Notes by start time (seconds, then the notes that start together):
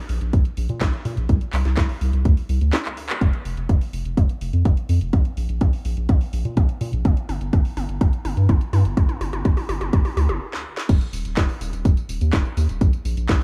0.09 A#1, open hi-hat
0.21 A#1, closed hi-hat
0.33 A#1, kick, closed hi-hat
0.45 closed hi-hat
0.57 A#1, open hi-hat
0.69 A#2, closed hi-hat
0.81 A#1, kick, snare, clap, closed hi-hat
0.93 closed hi-hat
1.05 A#2, open hi-hat
1.17 A#1, closed hi-hat
1.29 C2, kick, closed hi-hat
1.41 closed hi-hat
1.53 C2, clap, open hi-hat
1.65 C2, snare, closed hi-hat
1.77 C2, kick, snare, clap, closed hi-hat
1.89 open hi-hat
2.01 C2, open hi-hat
2.13 C2, closed hi-hat
2.25 D2, kick, closed hi-hat
2.37 open hi-hat
2.49 C2, open hi-hat
2.61 D2, closed hi-hat
2.73 snare, clap, closed hi-hat
2.85 clap, closed hi-hat
2.97 open hi-hat
3.09 clap, closed hi-hat
3.21 F1, kick, closed hi-hat, mid tom
3.33 closed hi-hat
3.45 F1, open hi-hat
3.57 F1, closed hi-hat
3.69 F1, kick, closed hi-hat, mid tom
3.81 open hi-hat
3.93 F1, open hi-hat
4.05 F1, closed hi-hat
4.17 F1, kick, closed hi-hat, mid tom
4.29 closed hi-hat
4.41 F1, open hi-hat
4.53 F2, closed hi-hat
4.65 F1, kick, closed hi-hat, mid tom
4.77 closed hi-hat
4.89 F2, open hi-hat
5.01 F1, closed hi-hat
5.13 A#1, kick, closed hi-hat, mid tom
5.25 closed hi-hat
5.37 A#1, open hi-hat
5.49 A#1, closed hi-hat
5.61 A#1, kick, closed hi-hat, mid tom
5.73 open hi-hat
5.85 A#1, open hi-hat
5.97 A#1, closed hi-hat
6.09 A#1, kick, closed hi-hat, mid tom
6.21 open hi-hat
6.33 A#1, open hi-hat
6.45 A#2, closed hi-hat
6.57 A#1, kick, closed hi-hat, mid tom
6.69 closed hi-hat
6.81 A#2, open hi-hat
6.93 A#1, closed hi-hat
7.05 G1, kick, closed hi-hat, mid tom
7.17 closed hi-hat
7.29 G1, open hi-hat, mid tom
7.41 G1, closed hi-hat
7.53 G1, kick, closed hi-hat, mid tom
7.65 open hi-hat
7.77 G1, open hi-hat, mid tom
7.89 G1, closed hi-hat
8.01 G1, kick, closed hi-hat, mid tom
8.13 closed hi-hat
8.25 G1, open hi-hat, mid tom
8.37 G2, closed hi-hat
8.49 G1, kick, closed hi-hat, mid tom
8.61 closed hi-hat
8.73 G2, open hi-hat, mid tom
8.85 G1, closed hi-hat
8.97 G1, kick, closed hi-hat, mid tom
9.09 closed hi-hat, mid tom
9.21 G1, open hi-hat, mid tom
9.33 G1, closed hi-hat, mid tom
9.45 G1, kick, closed hi-hat, mid tom
9.57 open hi-hat, mid tom
9.69 G1, open hi-hat, mid tom
9.81 G1, closed hi-hat, mid tom
9.93 G1, kick, closed hi-hat, mid tom
10.05 open hi-hat, mid tom
10.17 D2, open hi-hat, mid tom
10.29 G1, closed hi-hat, mid tom
10.53 snare
10.77 snare
10.89 D#1, kick, closed hi-hat, crash, tambourine
11.01 closed hi-hat, tambourine
11.13 D#1, open hi-hat, tambourine
11.25 D#1, closed hi-hat, tambourine
11.37 D#1, kick, snare, clap, closed hi-hat, tambourine
11.49 open hi-hat, tambourine
11.61 D#1, open hi-hat, tambourine
11.73 D#1, closed hi-hat, tambourine
11.85 D#1, kick, closed hi-hat, tambourine
11.97 closed hi-hat, tambourine
12.09 D#1, open hi-hat, tambourine
12.21 D#2, closed hi-hat, tambourine
12.33 D#1, kick, snare, clap, closed hi-hat, tambourine
12.45 tambourine
12.57 D#2, open hi-hat, tambourine
12.69 D#1, closed hi-hat, tambourine
12.81 A#1, kick, closed hi-hat, tambourine
12.93 closed hi-hat, tambourine
13.05 A#1, open hi-hat, tambourine
13.17 A#1, closed hi-hat, tambourine
13.29 A#1, kick, snare, clap, closed hi-hat, tambourine